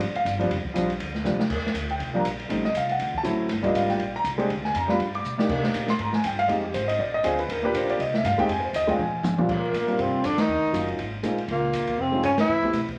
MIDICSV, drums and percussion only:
0, 0, Header, 1, 2, 480
1, 0, Start_track
1, 0, Tempo, 249584
1, 965, Time_signature, 4, 2, 24, 8
1, 24973, End_track
2, 0, Start_track
2, 0, Title_t, "Drums"
2, 8, Note_on_c, 9, 51, 83
2, 201, Note_off_c, 9, 51, 0
2, 296, Note_on_c, 9, 51, 52
2, 489, Note_off_c, 9, 51, 0
2, 501, Note_on_c, 9, 44, 68
2, 501, Note_on_c, 9, 51, 85
2, 693, Note_off_c, 9, 44, 0
2, 693, Note_off_c, 9, 51, 0
2, 780, Note_on_c, 9, 51, 50
2, 972, Note_off_c, 9, 51, 0
2, 977, Note_on_c, 9, 51, 73
2, 1169, Note_off_c, 9, 51, 0
2, 1243, Note_on_c, 9, 36, 67
2, 1435, Note_off_c, 9, 36, 0
2, 1453, Note_on_c, 9, 44, 72
2, 1453, Note_on_c, 9, 51, 88
2, 1645, Note_off_c, 9, 44, 0
2, 1645, Note_off_c, 9, 51, 0
2, 1726, Note_on_c, 9, 51, 52
2, 1918, Note_off_c, 9, 51, 0
2, 1925, Note_on_c, 9, 51, 75
2, 2117, Note_off_c, 9, 51, 0
2, 2207, Note_on_c, 9, 38, 43
2, 2399, Note_off_c, 9, 38, 0
2, 2404, Note_on_c, 9, 38, 56
2, 2408, Note_on_c, 9, 44, 59
2, 2596, Note_off_c, 9, 38, 0
2, 2600, Note_off_c, 9, 44, 0
2, 2687, Note_on_c, 9, 38, 73
2, 2879, Note_off_c, 9, 38, 0
2, 2883, Note_on_c, 9, 49, 84
2, 2886, Note_on_c, 9, 36, 81
2, 3052, Note_on_c, 9, 38, 32
2, 3075, Note_off_c, 9, 49, 0
2, 3078, Note_off_c, 9, 36, 0
2, 3203, Note_off_c, 9, 38, 0
2, 3203, Note_on_c, 9, 38, 47
2, 3359, Note_on_c, 9, 44, 77
2, 3359, Note_on_c, 9, 51, 75
2, 3395, Note_off_c, 9, 38, 0
2, 3551, Note_off_c, 9, 44, 0
2, 3551, Note_off_c, 9, 51, 0
2, 3645, Note_on_c, 9, 51, 47
2, 3837, Note_off_c, 9, 51, 0
2, 3846, Note_on_c, 9, 51, 63
2, 4038, Note_off_c, 9, 51, 0
2, 4325, Note_on_c, 9, 44, 75
2, 4325, Note_on_c, 9, 51, 78
2, 4517, Note_off_c, 9, 44, 0
2, 4517, Note_off_c, 9, 51, 0
2, 4606, Note_on_c, 9, 51, 49
2, 4798, Note_off_c, 9, 51, 0
2, 4807, Note_on_c, 9, 51, 76
2, 4999, Note_off_c, 9, 51, 0
2, 5089, Note_on_c, 9, 38, 42
2, 5281, Note_off_c, 9, 38, 0
2, 5283, Note_on_c, 9, 44, 67
2, 5283, Note_on_c, 9, 51, 83
2, 5476, Note_off_c, 9, 44, 0
2, 5476, Note_off_c, 9, 51, 0
2, 5562, Note_on_c, 9, 51, 46
2, 5754, Note_off_c, 9, 51, 0
2, 5759, Note_on_c, 9, 51, 75
2, 5951, Note_off_c, 9, 51, 0
2, 6036, Note_on_c, 9, 36, 64
2, 6229, Note_off_c, 9, 36, 0
2, 6239, Note_on_c, 9, 44, 69
2, 6239, Note_on_c, 9, 51, 74
2, 6432, Note_off_c, 9, 44, 0
2, 6432, Note_off_c, 9, 51, 0
2, 6710, Note_on_c, 9, 38, 44
2, 6714, Note_on_c, 9, 51, 74
2, 6902, Note_off_c, 9, 38, 0
2, 6906, Note_off_c, 9, 51, 0
2, 6995, Note_on_c, 9, 36, 53
2, 6997, Note_on_c, 9, 51, 53
2, 7188, Note_off_c, 9, 36, 0
2, 7189, Note_off_c, 9, 51, 0
2, 7212, Note_on_c, 9, 44, 59
2, 7212, Note_on_c, 9, 51, 84
2, 7405, Note_off_c, 9, 44, 0
2, 7405, Note_off_c, 9, 51, 0
2, 7491, Note_on_c, 9, 38, 40
2, 7495, Note_on_c, 9, 51, 48
2, 7684, Note_off_c, 9, 38, 0
2, 7684, Note_off_c, 9, 51, 0
2, 7684, Note_on_c, 9, 51, 73
2, 7876, Note_off_c, 9, 51, 0
2, 8163, Note_on_c, 9, 44, 64
2, 8163, Note_on_c, 9, 51, 73
2, 8356, Note_off_c, 9, 44, 0
2, 8356, Note_off_c, 9, 51, 0
2, 8449, Note_on_c, 9, 51, 56
2, 8641, Note_off_c, 9, 51, 0
2, 8654, Note_on_c, 9, 51, 77
2, 8847, Note_off_c, 9, 51, 0
2, 8930, Note_on_c, 9, 38, 41
2, 9122, Note_off_c, 9, 38, 0
2, 9126, Note_on_c, 9, 44, 58
2, 9126, Note_on_c, 9, 51, 80
2, 9318, Note_off_c, 9, 44, 0
2, 9318, Note_off_c, 9, 51, 0
2, 9406, Note_on_c, 9, 38, 51
2, 9598, Note_off_c, 9, 38, 0
2, 9610, Note_on_c, 9, 51, 67
2, 9803, Note_off_c, 9, 51, 0
2, 9896, Note_on_c, 9, 51, 49
2, 10088, Note_off_c, 9, 51, 0
2, 10091, Note_on_c, 9, 44, 71
2, 10283, Note_off_c, 9, 44, 0
2, 10368, Note_on_c, 9, 38, 71
2, 10560, Note_off_c, 9, 38, 0
2, 10560, Note_on_c, 9, 36, 84
2, 10563, Note_on_c, 9, 49, 88
2, 10753, Note_off_c, 9, 36, 0
2, 10755, Note_off_c, 9, 49, 0
2, 10839, Note_on_c, 9, 38, 62
2, 11031, Note_off_c, 9, 38, 0
2, 11039, Note_on_c, 9, 44, 67
2, 11039, Note_on_c, 9, 51, 83
2, 11231, Note_off_c, 9, 44, 0
2, 11231, Note_off_c, 9, 51, 0
2, 11309, Note_on_c, 9, 38, 63
2, 11313, Note_on_c, 9, 51, 43
2, 11502, Note_off_c, 9, 38, 0
2, 11506, Note_off_c, 9, 51, 0
2, 11517, Note_on_c, 9, 51, 72
2, 11709, Note_off_c, 9, 51, 0
2, 11786, Note_on_c, 9, 38, 65
2, 11978, Note_off_c, 9, 38, 0
2, 11995, Note_on_c, 9, 44, 72
2, 11995, Note_on_c, 9, 51, 90
2, 12187, Note_off_c, 9, 44, 0
2, 12187, Note_off_c, 9, 51, 0
2, 12289, Note_on_c, 9, 51, 59
2, 12481, Note_off_c, 9, 51, 0
2, 12484, Note_on_c, 9, 51, 71
2, 12677, Note_off_c, 9, 51, 0
2, 12964, Note_on_c, 9, 44, 78
2, 12964, Note_on_c, 9, 51, 85
2, 13156, Note_off_c, 9, 44, 0
2, 13156, Note_off_c, 9, 51, 0
2, 13254, Note_on_c, 9, 51, 78
2, 13446, Note_off_c, 9, 51, 0
2, 13921, Note_on_c, 9, 44, 65
2, 13921, Note_on_c, 9, 51, 91
2, 14113, Note_off_c, 9, 44, 0
2, 14113, Note_off_c, 9, 51, 0
2, 14204, Note_on_c, 9, 51, 59
2, 14396, Note_off_c, 9, 51, 0
2, 14414, Note_on_c, 9, 51, 82
2, 14607, Note_off_c, 9, 51, 0
2, 14894, Note_on_c, 9, 44, 65
2, 14894, Note_on_c, 9, 51, 91
2, 15086, Note_off_c, 9, 44, 0
2, 15086, Note_off_c, 9, 51, 0
2, 15178, Note_on_c, 9, 51, 52
2, 15370, Note_off_c, 9, 51, 0
2, 15382, Note_on_c, 9, 51, 75
2, 15574, Note_off_c, 9, 51, 0
2, 15654, Note_on_c, 9, 38, 63
2, 15846, Note_off_c, 9, 38, 0
2, 15854, Note_on_c, 9, 38, 41
2, 15858, Note_on_c, 9, 44, 71
2, 15858, Note_on_c, 9, 51, 87
2, 16046, Note_off_c, 9, 38, 0
2, 16050, Note_off_c, 9, 44, 0
2, 16050, Note_off_c, 9, 51, 0
2, 16125, Note_on_c, 9, 36, 67
2, 16132, Note_on_c, 9, 51, 56
2, 16317, Note_off_c, 9, 36, 0
2, 16325, Note_off_c, 9, 51, 0
2, 16330, Note_on_c, 9, 51, 85
2, 16522, Note_off_c, 9, 51, 0
2, 16812, Note_on_c, 9, 44, 83
2, 16812, Note_on_c, 9, 51, 89
2, 17004, Note_off_c, 9, 44, 0
2, 17004, Note_off_c, 9, 51, 0
2, 17081, Note_on_c, 9, 36, 52
2, 17092, Note_on_c, 9, 51, 50
2, 17274, Note_off_c, 9, 36, 0
2, 17284, Note_off_c, 9, 51, 0
2, 17295, Note_on_c, 9, 47, 62
2, 17488, Note_off_c, 9, 47, 0
2, 17773, Note_on_c, 9, 47, 104
2, 17777, Note_on_c, 9, 44, 72
2, 17965, Note_off_c, 9, 47, 0
2, 17969, Note_off_c, 9, 44, 0
2, 18048, Note_on_c, 9, 47, 90
2, 18241, Note_off_c, 9, 47, 0
2, 18245, Note_on_c, 9, 36, 69
2, 18250, Note_on_c, 9, 49, 79
2, 18438, Note_off_c, 9, 36, 0
2, 18442, Note_off_c, 9, 49, 0
2, 18736, Note_on_c, 9, 44, 57
2, 18736, Note_on_c, 9, 51, 71
2, 18928, Note_off_c, 9, 44, 0
2, 18928, Note_off_c, 9, 51, 0
2, 19002, Note_on_c, 9, 51, 40
2, 19194, Note_off_c, 9, 51, 0
2, 19206, Note_on_c, 9, 51, 61
2, 19399, Note_off_c, 9, 51, 0
2, 19690, Note_on_c, 9, 44, 59
2, 19690, Note_on_c, 9, 51, 73
2, 19882, Note_off_c, 9, 44, 0
2, 19882, Note_off_c, 9, 51, 0
2, 19959, Note_on_c, 9, 38, 80
2, 19963, Note_on_c, 9, 51, 65
2, 20151, Note_off_c, 9, 38, 0
2, 20155, Note_off_c, 9, 51, 0
2, 20656, Note_on_c, 9, 44, 68
2, 20656, Note_on_c, 9, 51, 74
2, 20848, Note_off_c, 9, 44, 0
2, 20848, Note_off_c, 9, 51, 0
2, 20930, Note_on_c, 9, 51, 40
2, 21122, Note_off_c, 9, 51, 0
2, 21130, Note_on_c, 9, 51, 68
2, 21322, Note_off_c, 9, 51, 0
2, 21605, Note_on_c, 9, 44, 59
2, 21605, Note_on_c, 9, 51, 65
2, 21797, Note_off_c, 9, 44, 0
2, 21797, Note_off_c, 9, 51, 0
2, 21889, Note_on_c, 9, 51, 46
2, 22081, Note_off_c, 9, 51, 0
2, 22083, Note_on_c, 9, 51, 57
2, 22275, Note_off_c, 9, 51, 0
2, 22565, Note_on_c, 9, 44, 67
2, 22565, Note_on_c, 9, 51, 79
2, 22757, Note_off_c, 9, 44, 0
2, 22757, Note_off_c, 9, 51, 0
2, 22833, Note_on_c, 9, 51, 55
2, 22839, Note_on_c, 9, 36, 47
2, 23025, Note_off_c, 9, 51, 0
2, 23032, Note_off_c, 9, 36, 0
2, 23528, Note_on_c, 9, 44, 59
2, 23528, Note_on_c, 9, 51, 70
2, 23720, Note_off_c, 9, 44, 0
2, 23720, Note_off_c, 9, 51, 0
2, 23802, Note_on_c, 9, 38, 84
2, 23806, Note_on_c, 9, 51, 62
2, 23994, Note_off_c, 9, 38, 0
2, 23998, Note_off_c, 9, 51, 0
2, 24278, Note_on_c, 9, 51, 42
2, 24281, Note_on_c, 9, 36, 51
2, 24471, Note_off_c, 9, 51, 0
2, 24473, Note_off_c, 9, 36, 0
2, 24484, Note_on_c, 9, 38, 38
2, 24488, Note_on_c, 9, 44, 56
2, 24488, Note_on_c, 9, 51, 75
2, 24676, Note_off_c, 9, 38, 0
2, 24680, Note_off_c, 9, 44, 0
2, 24680, Note_off_c, 9, 51, 0
2, 24768, Note_on_c, 9, 36, 49
2, 24780, Note_on_c, 9, 51, 43
2, 24960, Note_off_c, 9, 36, 0
2, 24972, Note_off_c, 9, 51, 0
2, 24973, End_track
0, 0, End_of_file